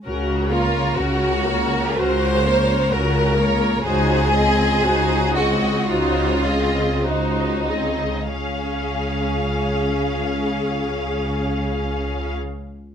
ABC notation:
X:1
M:4/4
L:1/8
Q:1/4=55
K:Db
V:1 name="Violin section"
B d B d B d B d | c e c e c e c e | f8 |]
V:2 name="Violin section"
z F G2 c2 B2 | A3 G F2 E2 | D8 |]
V:3 name="Viola section"
[DG] [B,B] [DG] [B,B] [DG] [B,B] [DG] [B,B] | [EG] [CA] [EG] [CA] [EG] [CA] [EG] [CA] | [DA]8 |]
V:4 name="Cello section" clef=bass
D,2 D,2 D,2 D,2 | D,2 D,2 D,2 D,2 | D,8 |]
V:5 name="Double bass section" clef=bass
D,,2 D,,2 D,,2 D,,2 | D,,2 D,,2 D,,2 D,,2 | D,,8 |]